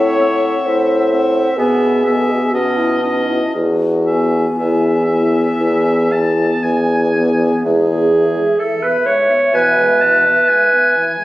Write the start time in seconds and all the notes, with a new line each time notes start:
Already playing: A2 C4 C#5 E5 F#5
0.19 C4 E5 F#5
0.66 A2 C5
1.12 C4 E5 F#5
1.57 B2 B3 G#4 E5 G#5
2.05 B3 E5 G#5
2.16 A4
2.25 G#4
2.34 F#4
2.44 G#4
2.52 B2 C#4 F#4 D#5 A5
2.78 E4
3.02 C#4 D#4 D#5 A5
3.28 E4
3.54 E2 F#4
4.06 B3 E5 G#5
4.57 E2 E4 E5
5.08 B3 G#5
5.60 E2
6.11 B3 G#5 A5
6.63 E2 G#5
7.14 B3 G#5
7.63 E2 G#2 G#4 E5
7.88 B2
8.11 E3
8.35 G#3
8.58 E3 A4
8.82 B2 B4
9.06 G#2 C#5
9.29 B2
9.53 B2 E3 B4 G#5
9.78 G#3
10.01 E3 A5
10.26 B2
10.48 G#2 G#5
10.73 B2
10.96 E3
11.19 G#3